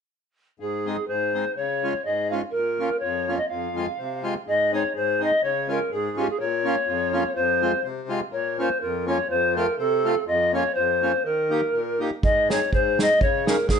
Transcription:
0.60 G#2 G#4
0.86 G#3 C4 D#4
1.08 G#2 C5
1.34 G#3 C4 D#4
1.56 C#3 C#5
1.83 G#3 C#4 F4
2.05 G#2 D#5
2.30 G#3 C#4 F4 F5
2.51 A#2 A#4
2.79 A#3 C#4 F4
2.99 F2 C#5
3.28 A#3 C#4 F4
3.37 D#5
3.48 F2 F5
3.76 G#3 C4 F4
3.99 C3
4.23 G#3 C4 F4
4.47 G#2 D#5
4.73 G#3 C4 D#4 C#5
4.95 G#2 C5
5.20 G#3 C4 D#4 D#5
5.43 C#3 C#5
5.68 G#3 C#4 F4 A#4
5.91 G#2 G#4
6.17 G#3 C#4 F4 G4
6.30 G#4
6.40 A#2 C#5
6.65 A#3 C#4 F4
6.87 F2
7.13 A#3 C#4 F4
7.35 F2 C5
7.62 G#3 C4 F4
7.84 C3
8.09 G#3 C4 F4
8.32 A#2 C#5
8.59 A#3 C#4 F4 C5
8.81 F2 A#4
9.07 A#3 C#4 F4 C#5
9.29 F2 C5
9.56 A3 C4 F4 A#4
9.78 C3 A4
10.05 A3 C4 F4
10.27 F2 D#5
10.54 A#3 C#4 F4 C#5
10.75 F2 C5
11.02 A#3 C#4 F4
11.24 D#3 A#4
11.50 A#3 D#4 G4
11.73 A#2
12.00 A#3 D#4 G4
12.23 G#2 D#5, kick
12.50 C4 D#4 G#4 C#5, snare
12.72 G#2 C5, kick
12.99 C4 D#4 G#4 D#5, snare
13.21 C#3 C#5, kick
13.46 C#4 D#4 G#4 A#4, snare
13.68 G#2 G#4, kick, snare

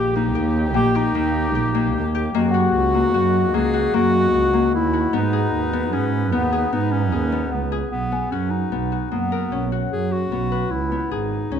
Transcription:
Already playing: A#1 D#3 A#3 G4
0.15 A#3 D#4
0.35 D#2 G4
0.74 A#1 A#3 G4 G5
0.95 D#4 G4
1.15 D#2 A#3
1.55 A#1 G4
1.75 A#3
1.96 D#2
2.15 G4
2.35 F#2 G#3 A#3 F#4 D#5
2.51 F#4 F#5
2.75 C#2
2.94 A#3
3.14 F#2 F#4
3.54 C#2 A#3 G#4
3.74 F#4
3.94 F#2 A#3 F#4
4.34 C#2 F#4
4.53 A#3
4.74 D#2 E4
4.93 F#4
5.13 G#2 B3 D#4 B4
5.33 G#4
5.54 D#2
5.73 B3
5.93 G#2 C#4 G#4
6.32 D#2 B3
6.52 G#4
6.73 G#2 B3 D#4
6.92 C#4
7.12 D#2 G#4
7.32 B3
7.52 C#2 B3
7.72 G#4
7.91 B1 B3
8.12 B3 G#5
8.31 F#2 C#4 F#4
8.51 D#4
8.72 B1 B3
8.92 F#4
9.11 F#2 A#3 B3
9.32 A#4
9.52 B1 C#4
9.72 F#4
9.92 F#2 G#4
10.12 F#4
10.32 B1 B3
10.52 B4
10.71 C#2 E4
10.92 B3
11.11 G#1 D#4 G#4
11.52 C#2 C#4

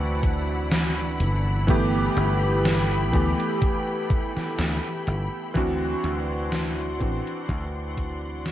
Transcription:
Already playing: D2 E3 C4 D4 E4 F#4 D5 F#5 B5
0.23 kick, closed hi-hat
0.72 snare, closed hi-hat
1.20 G1, closed hi-hat
1.67 E3 A3 B3 G4 A4 G5, kick, closed hi-hat
2.17 G1, closed hi-hat
2.65 snare, closed hi-hat
3.12 D2 E3 A3 B3 G4, kick, closed hi-hat
3.40 closed hi-hat
3.62 kick, closed hi-hat
4.10 kick, closed hi-hat
4.37 muted slap bass stroke, snare
4.59 D2, snare, closed hi-hat
5.07 G1, closed hi-hat
5.54 D2 E3 C4 D4 F#4 D5 F#5 C6, kick, closed hi-hat
6.04 D2, closed hi-hat
6.52 snare, closed hi-hat
6.99 A1 E3 C4 D4 F#4, kick, closed hi-hat
7.27 closed hi-hat
7.49 D2, kick, closed hi-hat
7.97 kick, closed hi-hat
8.46 snare, closed hi-hat

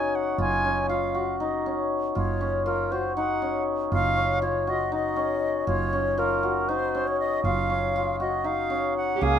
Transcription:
Already playing: F#1 C#4 D#4 F#4 G#5
0.15 F#5
0.38 F#1 F4 G#5
0.65 C#4
0.89 F4 F5
1.15 F#4
1.40 D#4 D#5
1.66 C#4
2.15 F#1 F4 C#5
2.41 C#4
2.66 F4 A#4
2.92 F#4 C5
3.16 D#4 F#5
3.42 C#4
3.92 F#1 F4 F5
4.17 C#4
4.42 F4 C#5
4.67 F#4 D#5
4.92 D#4 D#5
5.16 C#4
5.67 F#1 F4 C#5
5.93 C#4
6.18 F4 A#4
6.43 F#4
6.69 D#4 C5
6.95 C#4
7.07 C#5
7.20 D#5
7.44 F#1 F4 F5
7.70 C#4
7.96 F4
8.20 F#4 D#5
8.44 D#4 F5
8.70 C#4
8.97 F#5
9.16 G4
9.21 C#2 A#3 G#4 F5

